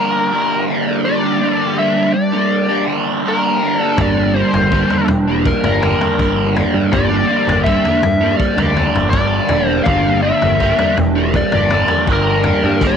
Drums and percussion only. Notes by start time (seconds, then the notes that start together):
3.98 kick, floor tom
4.54 floor tom
4.72 kick
4.90 floor tom
5.08 floor tom
5.46 kick
5.64 floor tom, mid tom
5.83 floor tom
6.01 floor tom
6.19 kick
6.56 floor tom
6.93 kick, floor tom
7.49 floor tom
7.66 kick
7.85 floor tom
8.03 floor tom
8.40 kick
8.58 floor tom, mid tom
8.77 floor tom
8.95 floor tom
9.13 kick
9.49 floor tom
9.85 kick, floor tom
10.42 floor tom
10.60 kick
10.79 floor tom
10.97 floor tom
11.34 kick
11.52 floor tom, mid tom
11.70 floor tom
11.88 floor tom
12.07 kick
12.44 floor tom
12.80 kick, snare